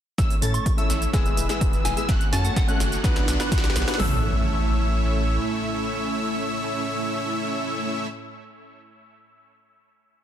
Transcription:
0.18 A1 A3 C#4 E4 C#5 E5 E6, kick, snare, closed hi-hat, riser, cabasa
0.30 open hi-hat, cabasa
0.41 A2 A3 C#4 E4 A4 C#5 A5 A6, open hi-hat, cabasa
0.54 C#6, closed hi-hat, cabasa
0.66 A1, kick, closed hi-hat, cabasa
0.77 A3 C#4 E4 A4 C#5 E5 E6, closed hi-hat, cabasa
0.90 A1, snare, open hi-hat, cabasa
1.02 closed hi-hat, cabasa
1.13 E1 E3 G#3 B3 E4 G#4 B4 E5 E6, kick, snare, closed hi-hat, cabasa
1.26 closed hi-hat, cabasa
1.37 E1, open hi-hat, cabasa
1.49 G#3 B3 E4 G#4 B4 E5 E6, snare, closed hi-hat, cabasa
1.61 E1, kick, closed hi-hat, cabasa
1.73 closed hi-hat, cabasa
1.85 E1 G#5, snare, open hi-hat, cabasa
1.96 G#3 B3 E4 G#4 B4 E5 E6, closed hi-hat, cabasa
2.09 F#1 A3 C#4 F#4 C#5 F#5 F#6, kick, snare, closed hi-hat, cabasa
2.21 closed hi-hat, cabasa
2.32 F#2 A3 C#4 F#4 A4 C#5 A5 A6, snare, open hi-hat, cabasa
2.45 F#5, closed hi-hat, cabasa
2.56 F#1 F#5, kick, snare, closed hi-hat, cabasa
2.68 A3 C#4 F#4 A4 C#5 F#5 F#6, closed hi-hat, cabasa
2.80 F#1, snare, open hi-hat, cabasa
2.92 closed hi-hat, cabasa
3.03 B1 B3 D4 F#4 B4 D5 F#5 F#6, kick, snare, closed hi-hat, cabasa
3.16 snare, closed hi-hat, cabasa
3.28 B1, snare, open hi-hat, cabasa
3.39 B3 D4 F#4 B4 D5 F#5 F#6, snare, closed hi-hat, cabasa
3.52 B1, kick, snare, closed hi-hat, cabasa
3.58 snare
3.64 snare, closed hi-hat, cabasa
3.70 snare
3.76 B1, snare, open hi-hat, cabasa
3.82 snare
3.87 B3 D4 F#4 B4 D5 F#5 F#6, snare, closed hi-hat, cabasa
3.94 A3, snare
3.99 A1 A2 A3 C#4 E4 A4 C#5 E5 E6, snare, floor tom, open hi-hat, impact

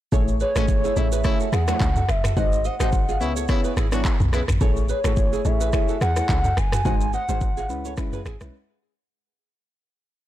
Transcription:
0.12 A1 A3 E4 G#4 A4 C#5, kick, shaker
0.28 shaker
0.40 G#4 B4 C#5, shaker
0.56 G#1 A2 G#3 A3 C#4 E4 F#4 G#4 A4 C#5, finger snap, cross-stick, shaker
0.68 kick, shaker
0.84 E4 G#4, shaker
0.96 A1 C#3 A3 E4 G#4 C#5 E5, shaker
1.12 G#4 B4, shaker
1.24 C#3 A3 E4 G#4 C#5, finger snap, kick, cross-stick, shaker
1.40 F#4 A4, shaker
1.53 E2 E4 G#4 F#5, finger snap, cross-stick, shaker
1.68 F#3 A3 D4 E4 F#4 G#4 C#5, finger snap, cross-stick, shaker
1.80 C#2, kick, clap, shaker
1.96 F#4 A4, mid tom, shaker
2.09 F#1 E5, finger snap, cross-stick, shaker
2.24 F#4 A4, finger snap, cross-stick, mid tom, shaker
2.36 G#1 G#3 D#4 F#4 C5 D#5 F#5, kick, shaker
2.52 shaker
2.65 C5 D#5 F#5, shaker
2.80 G#1 C3 G#3 D#4 F#4 G#4 C5, finger snap, cross-stick, shaker
2.92 kick, shaker
3.09 F4 G#4, shaker
3.21 C#2 C#3 B3 E4 G#4 C#5, shaker
3.37 A4 C#5, shaker
3.48 C#3 B3 E4 G#4 C#5, finger snap, kick, cross-stick, shaker
3.64 G#4 B4, shaker
3.77 G#1 E4 G#4, finger snap, cross-stick, shaker
3.92 F#3 B3 D4 E4 F#4 G#4 C#5, finger snap, cross-stick, shaker
4.05 kick, clap, shaker
4.20 B1, mid tom, shaker
4.33 C#3 B3 E4 G#4 B4, finger snap, cross-stick, shaker
4.48 G#1, finger snap, cross-stick, mid tom, shaker
4.61 A1 A3 E4 G#4 A4 C#5, kick, shaker
4.76 shaker
4.89 G#4 B4 C#5, shaker
5.04 G#1 A3 E4 F#4 G#4 A4 C#5, finger snap, cross-stick, shaker
5.16 kick, shaker
5.33 E4 G#4, shaker
5.45 A1 A3 E4 G#4 C#5 E5, shaker
5.61 G#4 B4, shaker
5.73 A3 E4 G#4 C#5, finger snap, kick, cross-stick, shaker
5.89 F#4 A4, shaker
6.01 E2 E4 G#4 F#5, finger snap, cross-stick, shaker
6.16 A3 E4 G#4 C#5, finger snap, cross-stick, shaker
6.29 C#2, kick, clap, shaker
6.44 F#4 A4, mid tom, shaker
6.57 F#1 G#5, finger snap, cross-stick, shaker
6.72 F#4 A4, finger snap, cross-stick, mid tom, shaker
6.85 G#1 G#3 D#4 F#4 C5 D#5 F#5 G#5, kick, shaker
7.01 shaker
7.13 C5 D#5 F#5, shaker
7.29 G#1 G#3 D#4 F#4 G#4 C5, shaker
7.41 kick, shaker
7.57 F4 G#4, shaker
7.69 C#2 G#3 C#4 E4 B4, shaker
7.85 A4 C#5, shaker
7.97 G#3 C#4 E4 B4, finger snap, kick, cross-stick, shaker
8.13 G#4 B4, mid tom, shaker
8.25 G#1 E4 G#4, finger snap, cross-stick, shaker
8.41 B1 G#3 C#4 E4 B4, finger snap, cross-stick, shaker

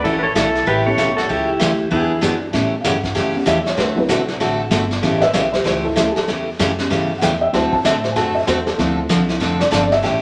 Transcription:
0.04 A1 C#3 E3 A3 C#4 E4 G4 A4, brush sweep, kick
0.19 B4
0.23 A4 C#5
0.35 B1 C#3 E3 A3 C#4 E4 G4 A4, snare, hi-hat pedal
0.55 snare
0.66 A1 C#3 E3 A3 C#4 G4 B4, brush sweep, kick
0.86 A3 B3 C#4 E4 G4 A4 C#5
0.97 B1 C#3 E3 A3 C#4 G4, snare, hi-hat pedal
1.17 F#4 A4, snare
1.29 C#2 C#3 E3 A3 C#4 E4 G4, brush sweep, kick
1.59 D2 C#3 E3 A3 C#4 G4, snare, hi-hat pedal
1.91 E2 E3 B3 D4 E4 G#4, brush sweep, kick
2.21 F#2 E3 G#3 B3 D4 E4 F#4 G#4, snare, hi-hat pedal
2.53 A2 C#3 E3 G3 A3 B3 C#4 G4, brush sweep, kick, snare
2.81 G2 C#3 E3 A3 F5, kick, snare, hi-hat pedal
2.85 C#4 G4 F#5
3.04 kick, snare
3.15 F#2 C#3 E3 A3 C#4 G4, brush sweep, kick, snare
3.35 G3 B3 C#4
3.46 E2 C#3 E3 A3 C#4 G4 E5, kick, snare, hi-hat pedal
3.66 C#5, snare
3.77 D2 D3 A3 C4 F#4 A4 B4, brush sweep, kick, snare
3.96 F#3 C4 E4 B4
4.09 B1 D3 A3 C4 F#4 A4, kick, snare, hi-hat pedal
4.28 snare
4.40 A1 D3 A3 C4 F#4 A4, brush sweep, kick, snare
4.71 G1 D3 A3 C4 F#4 A4, kick, snare, hi-hat pedal
4.91 snare
5.02 A1 C#3 E3 G3 A3 B3 C#4 G4, brush sweep, kick, snare
5.17 D#5
5.21 B4 E5, snare
5.33 B1 C#3 E3 A3 C#4 G4 B4 E5, kick, snare, hi-hat pedal
5.52 G4 C5, snare
5.64 C#2 C#3 E3 A3 C#4 G4 C5, brush sweep, kick, snare
5.84 E4 A4
5.96 D2 C#3 E3 A3 C#4 E4 G4 A4, kick, snare, hi-hat pedal
6.12 G#4, muted upright bass stroke
6.16 A4, snare
6.28 E2 C#3 E3 A3 C#4 G4, brush sweep, kick, snare
6.59 F#2 C#3 E3 A3 C#4 G4, kick, snare, hi-hat pedal
6.78 G3 B3 C#4, snare
6.90 G2 C#3 E3 A3 C#4 G4, brush sweep, kick, snare
7.18 E2 C#3 E3 F#5
7.22 A3 C#4 G4 G5, kick, snare, hi-hat pedal
7.41 E5
7.53 D2 D3 F#3 A3 C4 E4 F#4 A4 C5, brush sweep, kick, snare
7.72 A5, muted upright bass stroke, kick
7.85 A2 D3 A3 C4 F#4 A4 E5, kick, snare, hi-hat pedal
8.04 C5, snare
8.12 G#5
8.16 F#2 D3 A3 C4 F#4 A4 A5, brush sweep, kick, snare
8.35 E5
8.47 E2 D3 A3 C4 F#4 A4 C5, kick, snare, hi-hat pedal
8.66 A4, snare
8.78 D2 D3 F3 C4 D4 E4 A4, brush sweep, kick, snare
9.09 C2 D3 F3 C4 D4 A4, kick, snare, hi-hat pedal
9.28 F3 C4 E4, snare
9.40 F1 D3 F3 C4 D4 A4, brush sweep, kick, snare
9.60 D5, snare
9.71 G1 D3 F3 C4 D4 A4, kick, snare, hi-hat pedal
9.92 E5, snare
10.03 A1 C#3 E3 A3 C#4 G4 G5, brush sweep, kick, snare

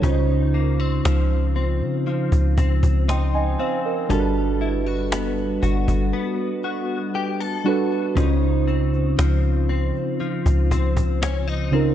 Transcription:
Already playing: B3 A4
0.02 C#2 C#3 C#4 D#4 F4 C5, cajon bass
0.29 cajon slap
0.54 A#3, cajon slap
0.80 C4, cajon slap
1.05 C#2 F3, cajon slap
1.31 cajon slap
1.56 C4, cajon slap
1.81 C#3, cajon slap
2.07 F3, cajon slap
2.32 C#2, cajon bass
2.58 C#2 C4, cajon bass
2.83 C#2, cajon bass
3.08 D#4 G5 C6, cajon slap
3.34 D#5 G#5, cajon slap
3.59 C4 C5 F5, cajon slap
3.85 A#4 D#5
4.09 G1 G3 D4 F#4 A4 A#4, cajon bass
4.19 B4
4.35 cajon slap
4.61 E4, cajon slap
4.86 F#4, cajon slap
5.12 B3, cajon slap
5.38 cajon slap
5.63 G1 F#4, cajon bass
5.88 G1, cajon bass
6.13 B3
6.64 F#4
7.15 G4
7.40 A4
7.64 G3 D4 F#4 A4 B4
8.15 C#2 C#3 C#4 D#4 F4 C5, cajon bass
8.42 cajon slap
8.68 C4, cajon slap
8.94 cajon slap
9.18 C#2 F3, cajon slap
9.44 cajon slap
9.69 C4, cajon slap
9.95 cajon slap
10.20 F3, cajon slap
10.46 C#2, cajon bass
10.71 C4, cajon bass
10.97 cajon bass
11.22 C#4, cajon slap
11.47 D#4, cajon slap
11.71 C#3 C4 C#4 D#4 F4, cajon slap
11.75 A#4

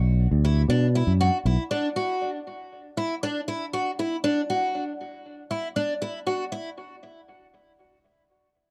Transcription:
Already playing: B1
0.31 D2
0.45 E4
0.69 B2 D4
0.95 E4
1.07 F#2
1.21 F#4
1.45 B1 E4
1.71 D4
1.96 F#4
2.97 E4
3.23 D4
3.48 E4
3.73 F#4
3.99 E4
4.24 D4
4.50 F#4
5.51 E4
5.76 D4
6.02 E4
6.27 F#4
6.52 E4

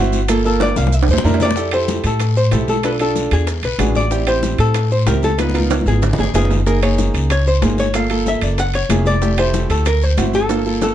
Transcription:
Already playing: G1 C4 E4 F#4
0.13 high bongo, high conga, short guiro, maracas
0.28 A#3 F4 A4, high bongo, high conga, high timbale, long guiro, maracas
0.45 A#3 F4 A4 A#4, high conga, maracas
0.60 D5, high bongo, high conga, high timbale, short guiro, maracas
0.76 C2 F5, high bongo, high conga, short guiro, maracas
0.87 high bongo
0.93 E5, high conga, long guiro, maracas
1.03 high timbale
1.08 E2 C5, high bongo, high conga, maracas
1.13 low timbale
1.18 low bongo
1.24 F2 D4 E4 A#4, high conga, low timbale, short guiro, maracas
1.29 low bongo
1.34 low timbale
1.40 D5, low bongo, short guiro, maracas
1.45 low timbale
1.51 low bongo
1.56 E4 G4 A4, high bongo, high conga, long guiro, maracas
1.71 E4 G4 A4 C5, high bongo, high conga, high timbale, maracas
1.88 high bongo, high conga, short guiro, maracas
2.04 A2 A4, high conga, high timbale, short guiro, maracas
2.20 high bongo, high conga, high timbale, long guiro, maracas
2.36 C5, high bongo, high conga, maracas
2.51 B1 E4 G4 A4, high bongo, low bongo, high conga, high timbale, low timbale, short guiro, maracas
2.68 A4, high bongo, high conga, short guiro, maracas
2.83 D4 F4 A4 B4, high bongo, high conga, high timbale, long guiro, maracas
2.99 D4 F4 A4, high bongo, high conga, high timbale, maracas
3.16 high bongo, high conga, short guiro, maracas
3.31 E2 G#4, high timbale, short guiro, maracas
3.47 high bongo, high conga, high timbale, long guiro, maracas
3.63 B1 B4, high bongo, high conga, high timbale, maracas
3.78 A1 D4 F#4 G#4, high bongo, low bongo, high conga, high timbale, low timbale, short guiro, maracas
3.95 D5, high bongo, high conga, short guiro, maracas
4.11 C4 E4 G4, high bongo, high conga, long guiro, maracas
4.27 C4 E4 G4 C5, high bongo, high timbale, maracas
4.43 high bongo, high conga, short guiro, maracas
4.58 A2 A4, high conga, high timbale, short guiro, maracas
4.74 high bongo, high conga, high timbale, long guiro, maracas
4.91 C5, high bongo, high conga, maracas
5.06 C#2 C4 E4 G4 A#4, high bongo, low bongo, high conga, high timbale, low timbale, short guiro, maracas
5.22 A4, high bongo, high conga, short guiro, maracas
5.38 B3 D#4 F4 B4, high bongo, high conga, high timbale, long guiro, maracas
5.49 high conga
5.54 B3 D#4 F4 A#4, high bongo, high timbale, maracas
5.60 high conga
5.70 high bongo, high timbale, short guiro, maracas
5.81 high conga
5.86 G#1 G#4, short guiro, maracas
5.92 high conga
6.02 high bongo, low conga, high timbale, long guiro, maracas
6.13 low conga
6.18 G1 G#4, high bongo, low timbale, maracas
6.24 low conga
6.34 F#1 B3 D#4 F4 G#4, high bongo, low bongo, low timbale, short guiro, maracas
6.45 low conga
6.50 high bongo, low timbale, short guiro, maracas
6.56 low conga
6.66 A#3 D#4 G#4 A#4, high bongo, high conga, long guiro, maracas
6.82 A#3 D#4 G#4 C#5, high bongo, high conga, high timbale, maracas
6.98 high bongo, high conga, short guiro, maracas
7.14 C#2, high conga, high timbale, short guiro, maracas
7.30 C#5, high bongo, high conga, high timbale, long guiro, maracas
7.46 C5, high bongo, high conga, maracas
7.62 G1 A#3 D#4 G#4, high bongo, low bongo, high conga, high timbale, low timbale, short guiro, maracas
7.78 C#5, high bongo, high conga, short guiro, maracas
7.94 A#3 F4 A4 F5, high bongo, high conga, high timbale, long guiro, maracas
8.10 A#3 F4 A4, high bongo, high conga, high timbale, maracas
8.26 E5, high bongo, high conga, short guiro, maracas
8.41 F#1 D5, high conga, high timbale, short guiro, maracas
8.58 F#5, high bongo, high conga, high timbale, long guiro, maracas
8.74 C#5, high bongo, high conga, high timbale, maracas
8.89 F1 A#3 E4 G#4, high bongo, low bongo, high conga, high timbale, low timbale, short guiro, maracas
9.06 D5, high bongo, high conga, short guiro, maracas
9.22 A3 E4 G4, high bongo, high conga, long guiro, maracas
9.38 A3 E4 G4 C5, high bongo, high conga, high timbale, maracas
9.54 high bongo, high conga, short guiro, maracas
9.70 D2 A4, high conga, high timbale, short guiro, maracas
9.86 A#4, high bongo, high conga, high timbale, long guiro, maracas
10.02 C5, high bongo, high conga, maracas
10.17 G1 C4 E4 F#4, high bongo, low bongo, high conga, high timbale, low timbale, short guiro, maracas
10.33 A4, high bongo, high conga, short guiro, maracas
10.49 A#3 F4 A4, high bongo, high conga, high timbale, long guiro, maracas
10.66 A#3 F4 A4, high bongo, high conga, maracas
10.81 A4, high bongo, high conga, high timbale, short guiro, maracas

